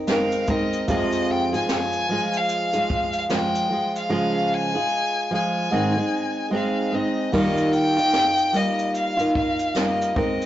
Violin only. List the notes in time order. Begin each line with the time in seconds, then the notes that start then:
0.08 F5
0.50 D#5
0.90 D#5
1.31 G5
1.55 G#5
1.72 G#5
2.37 F5
3.18 F5
3.35 G5
3.99 F5
4.54 G#5
5.35 G#5
6.55 F5
6.95 D#5
7.35 D#5
7.74 G5
8.56 D#5
8.96 F5
9.37 F5
9.76 D#5
10.16 D#5